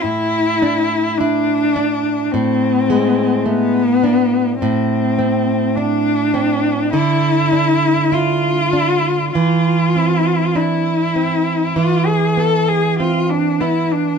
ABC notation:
X:1
M:4/4
L:1/16
Q:1/4=51
K:Ephr
V:1 name="Cello"
E4 D4 C4 B,4 | C4 D4 E4 F4 | F4 E4 F ^G A G F D E D |]
V:2 name="Nylon-string guitar"
A,,2 D2 E2 D2 A,,2 ^G,2 A,2 D2 | A,,2 C2 D2 C2 D,2 D2 E2 D2 | E,2 C2 D2 C2 E,2 B,2 C2 B,2 |]